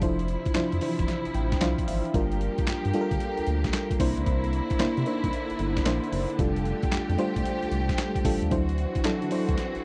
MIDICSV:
0, 0, Header, 1, 5, 480
1, 0, Start_track
1, 0, Tempo, 530973
1, 16, Time_signature, 4, 2, 24, 8
1, 8897, End_track
2, 0, Start_track
2, 0, Title_t, "FM electric piano"
2, 0, Program_c, 0, 5
2, 0, Control_c, 0, 64, 127
2, 13, Note_on_c, 0, 53, 94
2, 16, Note_on_c, 0, 62, 79
2, 22, Note_on_c, 0, 64, 87
2, 25, Note_on_c, 0, 72, 105
2, 30, Control_c, 0, 64, 0
2, 200, Control_c, 0, 64, 127
2, 357, Note_off_c, 0, 53, 0
2, 359, Note_off_c, 0, 62, 0
2, 361, Note_off_c, 0, 64, 0
2, 363, Note_off_c, 0, 72, 0
2, 491, Note_on_c, 0, 53, 94
2, 495, Note_on_c, 0, 62, 89
2, 498, Note_on_c, 0, 64, 92
2, 503, Note_on_c, 0, 72, 105
2, 679, Note_off_c, 0, 53, 0
2, 681, Note_off_c, 0, 62, 0
2, 682, Note_off_c, 0, 64, 0
2, 685, Note_off_c, 0, 72, 0
2, 734, Note_on_c, 0, 52, 70
2, 739, Note_on_c, 0, 62, 75
2, 742, Note_on_c, 0, 64, 84
2, 745, Note_on_c, 0, 72, 97
2, 792, Note_on_c, 0, 53, 87
2, 812, Note_off_c, 0, 52, 0
2, 1215, Note_off_c, 0, 62, 0
2, 1216, Note_off_c, 0, 64, 0
2, 1218, Note_off_c, 0, 72, 0
2, 1219, Note_on_c, 0, 79, 67
2, 1241, Note_off_c, 0, 53, 0
2, 1441, Note_off_c, 0, 79, 0
2, 1452, Note_on_c, 0, 53, 98
2, 1457, Note_on_c, 0, 62, 88
2, 1458, Note_on_c, 0, 77, 75
2, 1459, Note_on_c, 0, 64, 86
2, 1462, Note_on_c, 0, 72, 107
2, 1680, Note_off_c, 0, 77, 0
2, 1697, Note_on_c, 0, 76, 74
2, 1796, Note_off_c, 0, 53, 0
2, 1799, Note_off_c, 0, 62, 0
2, 1800, Note_off_c, 0, 64, 0
2, 1801, Note_off_c, 0, 72, 0
2, 1920, Note_off_c, 0, 76, 0
2, 1933, Note_on_c, 0, 55, 89
2, 1936, Note_on_c, 0, 62, 87
2, 1940, Note_on_c, 0, 65, 87
2, 1944, Note_on_c, 0, 70, 96
2, 1950, Control_c, 0, 64, 0
2, 2134, Control_c, 0, 64, 127
2, 2412, Note_off_c, 0, 55, 0
2, 2413, Note_off_c, 0, 62, 0
2, 2415, Note_off_c, 0, 65, 0
2, 2417, Note_off_c, 0, 70, 0
2, 2653, Note_on_c, 0, 55, 90
2, 2657, Note_on_c, 0, 62, 91
2, 2661, Note_on_c, 0, 65, 90
2, 2664, Note_on_c, 0, 69, 85
2, 2721, Note_on_c, 0, 70, 112
2, 2737, Note_off_c, 0, 69, 0
2, 3317, Note_off_c, 0, 55, 0
2, 3319, Note_off_c, 0, 62, 0
2, 3321, Note_off_c, 0, 65, 0
2, 3351, Note_off_c, 0, 70, 0
2, 3612, Note_on_c, 0, 58, 97
2, 3615, Note_on_c, 0, 62, 90
2, 3619, Note_on_c, 0, 64, 91
2, 3621, Note_on_c, 0, 72, 116
2, 3627, Control_c, 0, 64, 0
2, 3807, Control_c, 0, 64, 127
2, 4221, Note_off_c, 0, 58, 0
2, 4223, Note_off_c, 0, 62, 0
2, 4225, Note_off_c, 0, 64, 0
2, 4226, Note_off_c, 0, 72, 0
2, 4332, Note_on_c, 0, 58, 94
2, 4335, Note_on_c, 0, 62, 92
2, 4338, Note_on_c, 0, 64, 86
2, 4341, Note_on_c, 0, 72, 108
2, 4519, Note_off_c, 0, 58, 0
2, 4521, Note_off_c, 0, 62, 0
2, 4522, Note_off_c, 0, 64, 0
2, 4524, Note_off_c, 0, 72, 0
2, 4575, Note_on_c, 0, 58, 95
2, 4577, Note_on_c, 0, 62, 83
2, 4582, Note_on_c, 0, 63, 68
2, 4584, Note_on_c, 0, 72, 100
2, 4638, Note_on_c, 0, 64, 82
2, 4655, Note_off_c, 0, 63, 0
2, 5053, Note_off_c, 0, 58, 0
2, 5054, Note_off_c, 0, 62, 0
2, 5057, Note_off_c, 0, 72, 0
2, 5084, Note_off_c, 0, 64, 0
2, 5290, Note_on_c, 0, 58, 94
2, 5293, Note_on_c, 0, 62, 93
2, 5299, Note_on_c, 0, 64, 97
2, 5302, Note_on_c, 0, 72, 118
2, 5635, Note_off_c, 0, 58, 0
2, 5637, Note_off_c, 0, 62, 0
2, 5640, Note_off_c, 0, 64, 0
2, 5641, Note_off_c, 0, 72, 0
2, 5771, Note_on_c, 0, 55, 89
2, 5774, Note_on_c, 0, 62, 82
2, 5778, Note_on_c, 0, 65, 87
2, 5782, Note_on_c, 0, 69, 99
2, 5788, Control_c, 0, 64, 0
2, 5946, Control_c, 0, 64, 127
2, 6251, Note_off_c, 0, 55, 0
2, 6252, Note_off_c, 0, 62, 0
2, 6254, Note_off_c, 0, 65, 0
2, 6256, Note_off_c, 0, 69, 0
2, 6489, Note_on_c, 0, 55, 101
2, 6492, Note_on_c, 0, 62, 86
2, 6497, Note_on_c, 0, 65, 89
2, 6500, Note_on_c, 0, 72, 112
2, 7155, Note_off_c, 0, 55, 0
2, 7157, Note_off_c, 0, 62, 0
2, 7159, Note_off_c, 0, 65, 0
2, 7160, Note_off_c, 0, 72, 0
2, 7451, Note_on_c, 0, 55, 92
2, 7455, Note_on_c, 0, 62, 92
2, 7458, Note_on_c, 0, 65, 98
2, 7461, Note_on_c, 0, 69, 112
2, 7638, Note_off_c, 0, 55, 0
2, 7641, Note_off_c, 0, 62, 0
2, 7642, Note_off_c, 0, 65, 0
2, 7644, Note_off_c, 0, 69, 0
2, 7690, Note_on_c, 0, 54, 88
2, 7695, Note_on_c, 0, 62, 80
2, 7698, Note_on_c, 0, 64, 79
2, 7701, Note_on_c, 0, 72, 96
2, 7707, Control_c, 0, 64, 0
2, 7893, Control_c, 0, 64, 127
2, 8036, Note_off_c, 0, 54, 0
2, 8038, Note_off_c, 0, 62, 0
2, 8040, Note_off_c, 0, 64, 0
2, 8041, Note_off_c, 0, 72, 0
2, 8173, Note_on_c, 0, 54, 103
2, 8176, Note_on_c, 0, 62, 88
2, 8179, Note_on_c, 0, 64, 92
2, 8184, Note_on_c, 0, 69, 110
2, 8360, Note_off_c, 0, 54, 0
2, 8361, Note_off_c, 0, 62, 0
2, 8363, Note_off_c, 0, 64, 0
2, 8365, Note_off_c, 0, 69, 0
2, 8413, Note_on_c, 0, 54, 89
2, 8416, Note_on_c, 0, 62, 81
2, 8421, Note_on_c, 0, 64, 85
2, 8424, Note_on_c, 0, 72, 101
2, 8892, Note_off_c, 0, 54, 0
2, 8893, Note_off_c, 0, 62, 0
2, 8896, Note_off_c, 0, 64, 0
2, 8897, Note_off_c, 0, 72, 0
2, 8897, End_track
3, 0, Start_track
3, 0, Title_t, "String section"
3, 0, Program_c, 1, 48
3, 15, Note_on_c, 1, 48, 68
3, 16, Note_on_c, 1, 53, 62
3, 16, Note_on_c, 1, 64, 77
3, 1916, Note_off_c, 1, 48, 0
3, 1917, Note_off_c, 1, 64, 0
3, 1936, Note_on_c, 1, 67, 77
3, 1939, Note_on_c, 1, 58, 65
3, 3580, Note_off_c, 1, 53, 0
3, 3599, Note_off_c, 1, 67, 0
3, 3613, Note_on_c, 1, 50, 76
3, 3614, Note_on_c, 1, 64, 87
3, 5741, Note_off_c, 1, 58, 0
3, 5753, Note_off_c, 1, 64, 0
3, 5777, Note_on_c, 1, 57, 65
3, 5780, Note_on_c, 1, 67, 83
3, 7659, Note_off_c, 1, 50, 0
3, 7678, Note_off_c, 1, 57, 0
3, 7679, Note_off_c, 1, 67, 0
3, 7698, Note_on_c, 1, 66, 75
3, 7699, Note_on_c, 1, 52, 67
3, 7699, Note_on_c, 1, 60, 63
3, 8897, Note_off_c, 1, 52, 0
3, 8897, Note_off_c, 1, 60, 0
3, 8897, Note_off_c, 1, 66, 0
3, 8897, End_track
4, 0, Start_track
4, 0, Title_t, "Analog synth bass"
4, 0, Program_c, 2, 38
4, 16, Note_on_c, 2, 29, 98
4, 329, Note_off_c, 2, 29, 0
4, 501, Note_on_c, 2, 41, 48
4, 564, Note_off_c, 2, 41, 0
4, 661, Note_on_c, 2, 41, 99
4, 722, Note_off_c, 2, 41, 0
4, 896, Note_on_c, 2, 29, 97
4, 959, Note_off_c, 2, 29, 0
4, 1136, Note_on_c, 2, 33, 46
4, 1168, Note_off_c, 2, 33, 0
4, 1217, Note_on_c, 2, 33, 90
4, 1405, Note_off_c, 2, 33, 0
4, 1460, Note_on_c, 2, 36, 97
4, 1583, Note_off_c, 2, 36, 0
4, 1700, Note_on_c, 2, 32, 93
4, 1823, Note_off_c, 2, 32, 0
4, 1937, Note_on_c, 2, 31, 113
4, 2250, Note_off_c, 2, 31, 0
4, 2421, Note_on_c, 2, 43, 49
4, 2484, Note_off_c, 2, 43, 0
4, 2580, Note_on_c, 2, 43, 104
4, 2642, Note_off_c, 2, 43, 0
4, 2815, Note_on_c, 2, 38, 94
4, 2879, Note_off_c, 2, 38, 0
4, 3059, Note_on_c, 2, 38, 53
4, 3091, Note_off_c, 2, 38, 0
4, 3139, Note_on_c, 2, 38, 92
4, 3326, Note_off_c, 2, 38, 0
4, 3615, Note_on_c, 2, 36, 101
4, 3740, Note_off_c, 2, 36, 0
4, 3778, Note_on_c, 2, 37, 89
4, 3840, Note_off_c, 2, 37, 0
4, 3854, Note_on_c, 2, 36, 110
4, 4168, Note_off_c, 2, 36, 0
4, 4338, Note_on_c, 2, 48, 50
4, 4401, Note_off_c, 2, 48, 0
4, 4498, Note_on_c, 2, 48, 100
4, 4561, Note_off_c, 2, 48, 0
4, 4736, Note_on_c, 2, 36, 86
4, 4799, Note_off_c, 2, 36, 0
4, 4977, Note_on_c, 2, 31, 50
4, 5009, Note_off_c, 2, 31, 0
4, 5057, Note_on_c, 2, 31, 83
4, 5245, Note_off_c, 2, 31, 0
4, 5295, Note_on_c, 2, 34, 91
4, 5421, Note_off_c, 2, 34, 0
4, 5535, Note_on_c, 2, 30, 83
4, 5661, Note_off_c, 2, 30, 0
4, 5777, Note_on_c, 2, 29, 116
4, 6090, Note_off_c, 2, 29, 0
4, 6258, Note_on_c, 2, 41, 52
4, 6321, Note_off_c, 2, 41, 0
4, 6414, Note_on_c, 2, 41, 114
4, 6478, Note_off_c, 2, 41, 0
4, 6658, Note_on_c, 2, 36, 90
4, 6720, Note_off_c, 2, 36, 0
4, 6897, Note_on_c, 2, 36, 49
4, 6929, Note_off_c, 2, 36, 0
4, 6975, Note_on_c, 2, 36, 94
4, 7163, Note_off_c, 2, 36, 0
4, 7456, Note_on_c, 2, 33, 91
4, 7581, Note_off_c, 2, 33, 0
4, 7614, Note_on_c, 2, 39, 78
4, 7678, Note_off_c, 2, 39, 0
4, 7698, Note_on_c, 2, 38, 98
4, 8011, Note_off_c, 2, 38, 0
4, 8178, Note_on_c, 2, 50, 51
4, 8242, Note_off_c, 2, 50, 0
4, 8335, Note_on_c, 2, 50, 99
4, 8398, Note_off_c, 2, 50, 0
4, 8577, Note_on_c, 2, 38, 87
4, 8640, Note_off_c, 2, 38, 0
4, 8818, Note_on_c, 2, 33, 50
4, 8849, Note_off_c, 2, 33, 0
4, 8897, End_track
5, 0, Start_track
5, 0, Title_t, "Drums"
5, 14, Note_on_c, 9, 42, 70
5, 16, Note_on_c, 9, 36, 103
5, 105, Note_off_c, 9, 42, 0
5, 106, Note_off_c, 9, 36, 0
5, 174, Note_on_c, 9, 42, 54
5, 255, Note_off_c, 9, 42, 0
5, 255, Note_on_c, 9, 42, 76
5, 346, Note_off_c, 9, 42, 0
5, 411, Note_on_c, 9, 42, 49
5, 416, Note_on_c, 9, 36, 95
5, 494, Note_off_c, 9, 42, 0
5, 494, Note_on_c, 9, 38, 123
5, 494, Note_on_c, 9, 42, 80
5, 499, Note_on_c, 9, 39, 87
5, 507, Note_off_c, 9, 36, 0
5, 584, Note_off_c, 9, 38, 0
5, 584, Note_off_c, 9, 42, 0
5, 589, Note_off_c, 9, 39, 0
5, 654, Note_on_c, 9, 42, 55
5, 734, Note_on_c, 9, 46, 83
5, 744, Note_off_c, 9, 42, 0
5, 825, Note_off_c, 9, 46, 0
5, 895, Note_on_c, 9, 42, 58
5, 896, Note_on_c, 9, 36, 83
5, 977, Note_on_c, 9, 38, 64
5, 979, Note_off_c, 9, 42, 0
5, 979, Note_on_c, 9, 42, 71
5, 986, Note_off_c, 9, 36, 0
5, 1067, Note_off_c, 9, 38, 0
5, 1070, Note_off_c, 9, 42, 0
5, 1133, Note_on_c, 9, 42, 53
5, 1215, Note_off_c, 9, 42, 0
5, 1215, Note_on_c, 9, 42, 79
5, 1306, Note_off_c, 9, 42, 0
5, 1374, Note_on_c, 9, 36, 86
5, 1375, Note_on_c, 9, 38, 64
5, 1377, Note_on_c, 9, 42, 57
5, 1455, Note_off_c, 9, 42, 0
5, 1455, Note_on_c, 9, 42, 74
5, 1458, Note_off_c, 9, 38, 0
5, 1458, Note_on_c, 9, 38, 119
5, 1462, Note_on_c, 9, 39, 93
5, 1465, Note_off_c, 9, 36, 0
5, 1545, Note_off_c, 9, 42, 0
5, 1548, Note_off_c, 9, 38, 0
5, 1553, Note_off_c, 9, 39, 0
5, 1612, Note_on_c, 9, 36, 88
5, 1617, Note_on_c, 9, 42, 57
5, 1698, Note_on_c, 9, 46, 84
5, 1703, Note_off_c, 9, 36, 0
5, 1708, Note_off_c, 9, 42, 0
5, 1788, Note_off_c, 9, 46, 0
5, 1856, Note_on_c, 9, 42, 51
5, 1936, Note_on_c, 9, 36, 114
5, 1937, Note_off_c, 9, 42, 0
5, 1937, Note_on_c, 9, 42, 69
5, 2027, Note_off_c, 9, 36, 0
5, 2027, Note_off_c, 9, 42, 0
5, 2094, Note_on_c, 9, 42, 52
5, 2177, Note_off_c, 9, 42, 0
5, 2177, Note_on_c, 9, 42, 73
5, 2268, Note_off_c, 9, 42, 0
5, 2331, Note_on_c, 9, 42, 50
5, 2336, Note_on_c, 9, 36, 104
5, 2416, Note_off_c, 9, 42, 0
5, 2416, Note_on_c, 9, 38, 122
5, 2416, Note_on_c, 9, 42, 73
5, 2421, Note_on_c, 9, 39, 100
5, 2427, Note_off_c, 9, 36, 0
5, 2506, Note_off_c, 9, 38, 0
5, 2506, Note_off_c, 9, 42, 0
5, 2511, Note_off_c, 9, 39, 0
5, 2575, Note_on_c, 9, 42, 58
5, 2654, Note_off_c, 9, 42, 0
5, 2654, Note_on_c, 9, 42, 84
5, 2744, Note_off_c, 9, 42, 0
5, 2813, Note_on_c, 9, 42, 54
5, 2814, Note_on_c, 9, 36, 86
5, 2896, Note_off_c, 9, 42, 0
5, 2896, Note_on_c, 9, 42, 69
5, 2905, Note_off_c, 9, 36, 0
5, 2987, Note_off_c, 9, 42, 0
5, 3051, Note_on_c, 9, 42, 52
5, 3133, Note_off_c, 9, 42, 0
5, 3133, Note_on_c, 9, 42, 76
5, 3223, Note_off_c, 9, 42, 0
5, 3293, Note_on_c, 9, 36, 89
5, 3293, Note_on_c, 9, 38, 64
5, 3294, Note_on_c, 9, 42, 53
5, 3373, Note_off_c, 9, 42, 0
5, 3373, Note_on_c, 9, 42, 72
5, 3376, Note_off_c, 9, 38, 0
5, 3376, Note_on_c, 9, 38, 118
5, 3381, Note_on_c, 9, 39, 93
5, 3384, Note_off_c, 9, 36, 0
5, 3463, Note_off_c, 9, 42, 0
5, 3466, Note_off_c, 9, 38, 0
5, 3471, Note_off_c, 9, 39, 0
5, 3531, Note_on_c, 9, 36, 91
5, 3535, Note_on_c, 9, 42, 58
5, 3614, Note_off_c, 9, 36, 0
5, 3614, Note_on_c, 9, 36, 111
5, 3615, Note_on_c, 9, 46, 86
5, 3625, Note_off_c, 9, 42, 0
5, 3705, Note_off_c, 9, 36, 0
5, 3705, Note_off_c, 9, 46, 0
5, 3774, Note_on_c, 9, 42, 50
5, 3853, Note_off_c, 9, 42, 0
5, 3853, Note_on_c, 9, 42, 65
5, 3855, Note_on_c, 9, 36, 110
5, 3944, Note_off_c, 9, 42, 0
5, 3945, Note_off_c, 9, 36, 0
5, 4013, Note_on_c, 9, 42, 51
5, 4095, Note_off_c, 9, 42, 0
5, 4095, Note_on_c, 9, 42, 73
5, 4186, Note_off_c, 9, 42, 0
5, 4250, Note_on_c, 9, 42, 54
5, 4256, Note_on_c, 9, 36, 97
5, 4336, Note_off_c, 9, 42, 0
5, 4336, Note_on_c, 9, 38, 124
5, 4336, Note_on_c, 9, 42, 73
5, 4341, Note_on_c, 9, 39, 95
5, 4346, Note_off_c, 9, 36, 0
5, 4426, Note_off_c, 9, 38, 0
5, 4426, Note_off_c, 9, 42, 0
5, 4431, Note_off_c, 9, 39, 0
5, 4495, Note_on_c, 9, 42, 53
5, 4575, Note_off_c, 9, 42, 0
5, 4575, Note_on_c, 9, 42, 86
5, 4666, Note_off_c, 9, 42, 0
5, 4734, Note_on_c, 9, 42, 59
5, 4735, Note_on_c, 9, 36, 90
5, 4818, Note_off_c, 9, 42, 0
5, 4818, Note_on_c, 9, 42, 70
5, 4825, Note_off_c, 9, 36, 0
5, 4908, Note_off_c, 9, 42, 0
5, 4971, Note_on_c, 9, 42, 49
5, 5053, Note_off_c, 9, 42, 0
5, 5053, Note_on_c, 9, 42, 77
5, 5144, Note_off_c, 9, 42, 0
5, 5213, Note_on_c, 9, 36, 79
5, 5213, Note_on_c, 9, 38, 67
5, 5215, Note_on_c, 9, 42, 57
5, 5293, Note_off_c, 9, 42, 0
5, 5293, Note_on_c, 9, 42, 74
5, 5297, Note_off_c, 9, 38, 0
5, 5297, Note_on_c, 9, 38, 125
5, 5301, Note_on_c, 9, 39, 98
5, 5304, Note_off_c, 9, 36, 0
5, 5384, Note_off_c, 9, 42, 0
5, 5387, Note_off_c, 9, 38, 0
5, 5392, Note_off_c, 9, 39, 0
5, 5457, Note_on_c, 9, 42, 57
5, 5537, Note_on_c, 9, 46, 88
5, 5547, Note_off_c, 9, 42, 0
5, 5627, Note_off_c, 9, 46, 0
5, 5696, Note_on_c, 9, 42, 49
5, 5775, Note_on_c, 9, 36, 117
5, 5776, Note_off_c, 9, 42, 0
5, 5776, Note_on_c, 9, 42, 71
5, 5866, Note_off_c, 9, 36, 0
5, 5866, Note_off_c, 9, 42, 0
5, 5934, Note_on_c, 9, 42, 55
5, 6015, Note_off_c, 9, 42, 0
5, 6015, Note_on_c, 9, 42, 68
5, 6106, Note_off_c, 9, 42, 0
5, 6171, Note_on_c, 9, 42, 52
5, 6176, Note_on_c, 9, 36, 103
5, 6256, Note_off_c, 9, 42, 0
5, 6256, Note_on_c, 9, 38, 117
5, 6256, Note_on_c, 9, 42, 78
5, 6261, Note_on_c, 9, 39, 96
5, 6266, Note_off_c, 9, 36, 0
5, 6346, Note_off_c, 9, 38, 0
5, 6346, Note_off_c, 9, 42, 0
5, 6351, Note_off_c, 9, 39, 0
5, 6415, Note_on_c, 9, 42, 52
5, 6495, Note_off_c, 9, 42, 0
5, 6495, Note_on_c, 9, 42, 85
5, 6585, Note_off_c, 9, 42, 0
5, 6656, Note_on_c, 9, 36, 84
5, 6656, Note_on_c, 9, 42, 59
5, 6739, Note_off_c, 9, 42, 0
5, 6739, Note_on_c, 9, 42, 75
5, 6746, Note_off_c, 9, 36, 0
5, 6830, Note_off_c, 9, 42, 0
5, 6893, Note_on_c, 9, 42, 49
5, 6975, Note_off_c, 9, 42, 0
5, 6975, Note_on_c, 9, 42, 77
5, 7065, Note_off_c, 9, 42, 0
5, 7134, Note_on_c, 9, 36, 83
5, 7134, Note_on_c, 9, 38, 66
5, 7136, Note_on_c, 9, 42, 57
5, 7214, Note_off_c, 9, 42, 0
5, 7214, Note_on_c, 9, 42, 66
5, 7217, Note_off_c, 9, 38, 0
5, 7217, Note_on_c, 9, 38, 119
5, 7222, Note_on_c, 9, 39, 89
5, 7224, Note_off_c, 9, 36, 0
5, 7304, Note_off_c, 9, 42, 0
5, 7307, Note_off_c, 9, 38, 0
5, 7312, Note_off_c, 9, 39, 0
5, 7372, Note_on_c, 9, 36, 89
5, 7376, Note_on_c, 9, 42, 55
5, 7455, Note_off_c, 9, 36, 0
5, 7455, Note_on_c, 9, 36, 108
5, 7458, Note_on_c, 9, 46, 85
5, 7466, Note_off_c, 9, 42, 0
5, 7546, Note_off_c, 9, 36, 0
5, 7548, Note_off_c, 9, 46, 0
5, 7617, Note_on_c, 9, 42, 49
5, 7696, Note_off_c, 9, 42, 0
5, 7696, Note_on_c, 9, 36, 121
5, 7696, Note_on_c, 9, 42, 68
5, 7786, Note_off_c, 9, 36, 0
5, 7786, Note_off_c, 9, 42, 0
5, 7855, Note_on_c, 9, 42, 54
5, 7937, Note_off_c, 9, 42, 0
5, 7937, Note_on_c, 9, 42, 71
5, 8027, Note_off_c, 9, 42, 0
5, 8092, Note_on_c, 9, 42, 51
5, 8096, Note_on_c, 9, 36, 96
5, 8176, Note_off_c, 9, 42, 0
5, 8176, Note_on_c, 9, 38, 120
5, 8176, Note_on_c, 9, 42, 75
5, 8181, Note_on_c, 9, 39, 93
5, 8187, Note_off_c, 9, 36, 0
5, 8266, Note_off_c, 9, 38, 0
5, 8266, Note_off_c, 9, 42, 0
5, 8271, Note_off_c, 9, 39, 0
5, 8335, Note_on_c, 9, 42, 55
5, 8415, Note_on_c, 9, 46, 85
5, 8425, Note_off_c, 9, 42, 0
5, 8505, Note_off_c, 9, 46, 0
5, 8575, Note_on_c, 9, 42, 56
5, 8576, Note_on_c, 9, 36, 91
5, 8656, Note_on_c, 9, 38, 65
5, 8659, Note_off_c, 9, 42, 0
5, 8659, Note_on_c, 9, 42, 71
5, 8666, Note_off_c, 9, 36, 0
5, 8747, Note_off_c, 9, 38, 0
5, 8749, Note_off_c, 9, 42, 0
5, 8813, Note_on_c, 9, 42, 47
5, 8897, Note_off_c, 9, 42, 0
5, 8897, End_track
0, 0, End_of_file